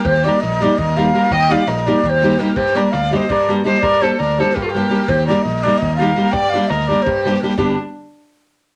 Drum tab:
SD |-oo-oooo--o-oo|--o-ooo---oooo|-oo-oooo--o-oo|-oo-oooo--o-oo|
BD |o-------o-----|o-------o-----|o-------o-----|o-------o-----|

SD |-oo-oooo--o-oo|-ooooooo--oooo|--------------|
BD |o-------o-----|o-------o-----|o-------------|